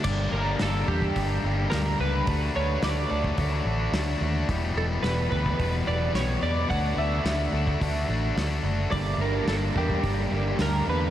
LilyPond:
<<
  \new Staff \with { instrumentName = "Clean electric guitar" } { \time 4/4 \key g \lydian \tempo 4 = 108 d''8 bes'8 a'8 g'4. bes'8 b'8~ | b'8 cis''8 d''2 r4 | r8 a'8 b'8 b'4 d''8 cis''8 d''8 | fis''8 e''2. r8 |
d''8 bes'8 a'8 g'4. bes'8 b'8 | }
  \new Staff \with { instrumentName = "Distorted electric guitar" } { \time 4/4 \key g \lydian <g, d g bes d' g'>8 <g, d g bes d' g'>8 <g, d g bes d' g'>8 <g, d g bes d' g'>8 <g, d g bes d' g'>8 <g, d g bes d' g'>8 <g, d g bes d' g'>8 <g, d g bes d' g'>8 | <d a d' fis'>8 <d a d' fis'>8 <d a d' fis'>8 <d a d' fis'>8 <d a d' fis'>8 <d a d' fis'>8 <d a d' fis'>8 <d a d' fis'>8 | <e, b, e g b g'>8 <e, b, e g b g'>8 <e, b, e g b g'>8 <e, b, e g b g'>8 <e, b, e g b g'>8 <e, b, e g b g'>8 <e, b, e g b g'>8 <e, b, e g b g'>8 | <d a d' fis'>8 <d a d' fis'>8 <d a d' fis'>8 <d a d' fis'>8 <d a d' fis'>8 <d a d' fis'>8 <d a d' fis'>8 <d a d' fis'>8 |
<g, d g bes d' g'>8 <g, d g bes d' g'>8 <g, d g bes d' g'>8 <g, d g bes d' g'>8 <g, d g bes d' g'>8 <g, d g bes d' g'>8 <g, d g bes d' g'>8 <g, d g bes d' g'>8 | }
  \new Staff \with { instrumentName = "Overdriven electric guitar" } { \clef bass \time 4/4 \key g \lydian r1 | r1 | r1 | r1 |
<g, d g bes d'>8 <g, d g bes d'>8 <g, d g bes d'>8 <g, d g bes d'>8 <g, d g bes d'>8 <g, d g bes d'>8 <g, d g bes d'>8 <g, d g bes d'>8 | }
  \new Staff \with { instrumentName = "Fingered electric bass" } { \clef bass \time 4/4 \key g \lydian g,,8 g,,8 g,,8 e,8 g,,8 g,,8 d,8 cis,8 | d,8 d,8 d,8 d,8 d,8 a,,8 d,8 ees,8 | e,,8 e,,8 e,,8 d,8 e,,8 e,,8 b,,8 e,8 | d,8 d,8 d,8 d,8 d,8 a,,8 d,8 fis,,8 |
g,,8 g,,8 g,,8 e,8 g,,8 g,,8 d,8 e,8 | }
  \new DrumStaff \with { instrumentName = "Drums" } \drummode { \time 4/4 <cymc bd>4 <hho sn>8 bd16 bd16 <hho bd>4 <hho sn>4 | <hho bd>4 <hho sn>8. bd16 <hho bd>4 <hho sn>4 | <hho bd>4 <hho sn>8 bd16 bd16 <hho bd>4 <hho sn>4 | <hho bd>4 <hho sn>8. bd16 <hho bd>4 <hho sn>4 |
<hho bd>4 <hho sn>8 bd16 bd16 <hho bd>4 <hho sn>4 | }
>>